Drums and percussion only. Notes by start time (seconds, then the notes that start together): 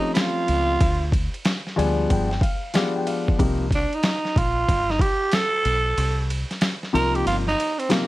0.15 snare, hi-hat pedal, ride
0.48 ride
0.81 kick, ride
1.12 kick, ride
1.34 ride
1.45 snare, hi-hat pedal, ride
1.67 snare
1.79 ride
2.10 kick, ride
2.31 snare
2.41 kick, ride
2.74 snare, hi-hat pedal, ride
3.07 ride
3.28 kick
3.39 kick, ride
3.71 kick, ride
3.93 ride
4.03 snare, hi-hat pedal, ride
4.25 snare
4.36 kick, ride
4.68 kick, ride
4.90 snare
4.99 kick, ride
5.31 snare, hi-hat pedal, ride
5.65 ride
5.98 ride
6.30 ride
6.51 snare, ride
6.61 snare, hi-hat pedal, ride
6.83 snare
6.95 ride
7.15 ride
7.27 ride
7.47 snare
7.60 ride
7.80 ride
7.90 snare, hi-hat pedal, ride